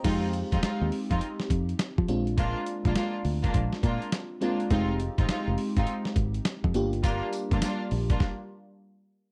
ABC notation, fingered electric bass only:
X:1
M:4/4
L:1/16
Q:"Swing 16ths" 1/4=103
K:Fdor
V:1 name="Fingered electric bass" clef=bass
F,,3 F,, z E,, z F,, z2 F,,2 z F, B,,,2- | B,,,2 z B,,, z2 D,,2 B,,, z B,, z4 z | F,,,3 A,,, z F,,, z A,,, z2 A,,,2 z F,, G,,,2- | G,,,2 z G,,, z2 B,,,2 z8 |]